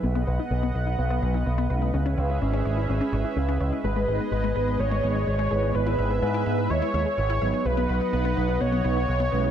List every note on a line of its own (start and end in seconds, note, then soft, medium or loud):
0.00 0.24 B1 medium
0.00 0.24 F#3 medium
0.00 0.24 B3 medium
0.00 0.09 B3 medium
0.00 1.92 B3 medium
0.00 0.24 D#4 medium
0.00 0.24 B4 loud
0.00 9.51 B4 medium
0.00 1.92 D#5 medium
0.00 1.92 F#5 medium
0.15 0.21 B3 loud
0.27 0.37 B1 medium
0.27 0.72 F#3 medium
0.27 0.72 B3 medium
0.27 0.72 D#4 medium
0.27 0.72 B4 medium
0.27 0.33 B4 medium
0.39 0.48 D#4 medium
0.51 0.71 B1 medium
0.51 0.56 B3 medium
0.63 0.68 B3 medium
0.75 0.95 B1 medium
0.75 1.20 F#3 medium
0.75 1.20 B3 medium
0.75 1.20 D#4 medium
0.75 1.20 B4 medium
0.75 0.80 B4 medium
0.87 0.96 D#4 medium
0.98 1.19 B1 medium
0.98 1.04 B3 medium
1.10 1.16 B3 medium
1.22 1.42 B1 medium
1.22 1.35 F#3 medium
1.22 1.35 B3 medium
1.22 1.35 D#4 medium
1.22 1.35 B4 loud
1.22 1.28 B4 medium
1.34 1.43 D#4 medium
1.46 1.66 B1 medium
1.46 1.52 B3 medium
1.58 1.64 B3 loud
1.70 1.90 B1 medium
1.70 2.15 G#3 loud
1.70 2.15 C#4 medium
1.70 2.15 E4 medium
1.70 2.15 B4 loud
1.70 1.76 B4 medium
1.82 1.91 D#4 medium
1.94 2.14 C#2 medium
1.94 1.99 C#4 medium
1.94 3.83 C#4 medium
1.94 3.83 G#4 medium
1.94 3.83 E5 medium
2.06 2.11 C#4 loud
2.17 2.38 C#2 medium
2.17 2.62 G#3 medium
2.17 2.62 C#4 medium
2.17 2.62 E4 medium
2.17 2.62 B4 medium
2.17 2.23 C#5 medium
2.30 2.39 E4 medium
2.41 2.62 G#1 medium
2.41 2.47 C#4 medium
2.53 2.59 C#4 loud
2.65 2.85 G#1 medium
2.65 3.10 G#3 medium
2.65 3.10 C#4 medium
2.65 3.10 E4 medium
2.65 3.10 B4 medium
2.65 2.71 C#5 medium
2.77 2.86 E4 medium
2.89 2.99 G#1 medium
2.89 2.95 C#4 medium
3.01 3.07 C#4 medium
3.13 3.23 G#1 medium
3.13 3.58 G#3 medium
3.13 3.58 C#4 medium
3.13 3.58 E4 medium
3.13 3.58 B4 loud
3.13 3.18 C#5 medium
3.25 3.34 E4 medium
3.37 3.57 C#2 medium
3.37 3.42 C#4 medium
3.49 3.54 C#4 loud
3.60 3.71 C#2 medium
3.60 3.80 G#3 medium
3.60 3.80 C#4 medium
3.60 3.80 E4 medium
3.60 3.66 C#5 medium
3.60 3.80 D#5 medium
3.72 3.82 E4 medium
3.84 4.04 G#1 medium
3.84 5.73 G#3 medium
3.84 3.90 G#3 medium
3.84 7.61 G#4 medium
3.84 4.29 B4 loud
3.84 5.73 D#5 medium
3.96 4.02 G#3 medium
4.08 4.18 G#1 medium
4.08 4.53 G#3 medium
4.08 4.53 B3 medium
4.08 4.53 D#4 medium
4.08 4.14 G#4 medium
4.08 4.53 B4 medium
4.20 4.29 B3 medium
4.32 4.52 G#1 medium
4.32 4.37 G#3 medium
4.32 4.81 B4 loud
4.44 4.49 G#3 loud
4.56 4.76 G#1 medium
4.56 5.00 G#3 medium
4.56 5.00 B3 medium
4.56 5.00 D#4 medium
4.56 4.61 G#4 medium
4.56 5.00 B4 medium
4.68 4.77 B3 medium
4.79 5.00 G#1 medium
4.79 4.85 G#3 medium
4.79 5.03 C#5 loud
4.91 4.97 G#3 loud
5.03 5.24 G#1 medium
5.03 5.16 G#3 medium
5.03 5.16 B3 medium
5.03 5.16 D#4 medium
5.03 5.09 G#4 medium
5.03 5.16 B4 loud
5.03 5.77 C#5 loud
5.15 5.24 B3 medium
5.27 5.47 G#1 medium
5.27 5.33 G#3 medium
5.39 5.45 G#3 loud
5.51 5.71 G#1 medium
5.51 5.96 G#3 medium
5.51 5.96 B3 medium
5.51 5.96 E4 medium
5.51 5.56 G#4 medium
5.51 5.96 B4 loud
5.63 5.72 B3 medium
5.75 5.95 G#1 medium
5.75 7.63 G#3 medium
5.75 5.80 E4 medium
5.75 6.22 B4 loud
5.75 7.63 E5 medium
5.87 5.92 E4 loud
5.99 6.19 G#1 loud
5.99 6.43 G#3 medium
5.99 6.43 B3 medium
5.99 6.43 E4 medium
5.99 6.43 B4 medium
5.99 6.04 E5 medium
6.11 6.20 G#4 medium
6.22 6.43 G#2 medium
6.22 6.28 E4 medium
6.22 6.72 B4 loud
6.34 6.40 E4 medium
6.46 6.67 G#2 medium
6.46 6.91 G#3 medium
6.46 6.91 B3 medium
6.46 6.91 E4 medium
6.46 6.91 B4 medium
6.46 6.52 E5 medium
6.58 6.67 G#4 medium
6.70 6.80 D#2 medium
6.70 6.76 E4 medium
6.70 6.93 C#5 loud
6.82 6.87 E4 loud
6.94 7.04 D#2 medium
6.94 7.06 G#3 medium
6.94 7.06 B3 medium
6.94 7.06 E4 medium
6.94 7.06 B4 loud
6.94 7.67 C#5 loud
6.94 6.99 E5 medium
7.06 7.15 G#4 medium
7.18 7.38 G#1 medium
7.18 7.23 E4 medium
7.30 7.35 E4 loud
7.41 7.52 G#1 medium
7.41 7.86 F#3 medium
7.41 7.86 B3 medium
7.41 7.86 D#4 medium
7.41 7.86 B4 loud
7.41 7.47 E5 medium
7.54 7.63 G#4 medium
7.65 7.86 B1 medium
7.65 9.51 B3 medium
7.65 7.71 B3 medium
7.65 8.12 B4 loud
7.65 9.51 D#5 medium
7.65 9.51 F#5 medium
7.77 7.83 B3 loud
7.89 7.99 B1 medium
7.89 8.34 F#3 medium
7.89 8.34 B3 medium
7.89 8.34 D#4 medium
7.89 8.34 B4 medium
7.89 7.95 B4 medium
8.01 8.10 D#4 medium
8.13 8.33 B1 medium
8.13 8.18 B3 medium
8.13 8.62 B4 loud
8.25 8.30 B3 loud
8.37 8.57 B1 medium
8.37 8.81 F#3 medium
8.37 8.81 B3 medium
8.37 8.82 D#4 medium
8.37 8.82 B4 medium
8.37 8.42 B4 medium
8.49 8.58 D#4 medium
8.61 8.81 B1 medium
8.61 8.66 B3 medium
8.61 9.51 C#5 loud
8.72 8.78 B3 loud
8.84 9.05 B1 medium
8.84 8.97 F#3 medium
8.84 8.97 B3 medium
8.84 8.97 D#4 medium
8.84 8.90 B4 medium
8.84 8.97 B4 loud
8.96 9.05 D#4 medium
9.08 9.28 B1 medium
9.08 9.14 B3 medium
9.20 9.26 B3 loud
9.32 9.51 B1 medium
9.32 9.51 G#3 loud
9.32 9.51 C#4 medium
9.32 9.51 E4 medium
9.32 9.37 B4 medium
9.32 9.51 B4 loud
9.44 9.51 D#4 medium